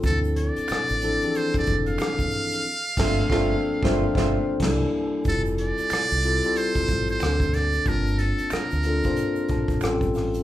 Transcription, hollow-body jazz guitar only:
X:1
M:4/4
L:1/16
Q:"Swing 16ths" 1/4=92
K:F
V:1 name="Hollow-body jazz guitar"
z16 | z2 [A,F]2 [A,F]2 z [A,F]2 [A,F]2 z4 z | z16 | z16 |]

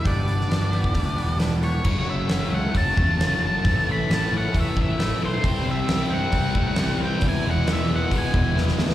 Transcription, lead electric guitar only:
X:1
M:4/4
L:1/8
Q:1/4=134
K:F#phr
V:1 name="Lead electric guitar"
d6 z c- | c e2 f a3 a- | a b a f e e2 =c- | =c e2 f4 g |
^g f e f g2 z2 |]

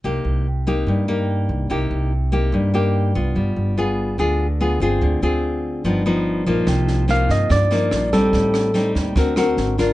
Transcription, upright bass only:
X:1
M:4/4
L:1/8
Q:1/4=145
K:Cm
V:1 name="Upright bass" clef=bass
C,, C,,3 G,,3 C,, | C,, C,,3 G,,3 C,, | G,,, G,,,3 D,,3 G,,, | D,, D,,3 G,,,3 ^A,,, |
C,,3 G,, G,,2 B,,,2 | =A,,,3 E,, D,,2 _A,,,2 |]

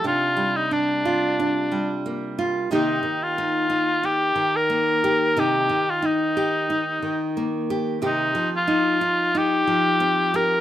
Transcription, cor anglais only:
X:1
M:4/4
L:1/16
Q:1/4=90
K:Cm
V:1 name="Cor anglais"
F3 E D8 z4 | E3 F4- F G3 B4- B | G3 F E8 z4 | E3 F4- F G6 B2 |]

